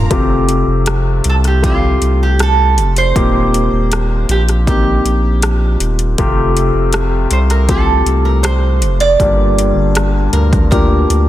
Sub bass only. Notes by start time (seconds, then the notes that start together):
0.10 F1
0.67 F1
1.25 C2
2.01 C2
2.77 F1
3.16 D#1
3.72 D#1
4.29 A#1
5.05 A#1
5.80 D#1
6.18 F1
6.74 F1
7.31 C2
8.06 C2
8.81 F1
9.20 G1
9.76 G1
10.33 D2
11.09 D2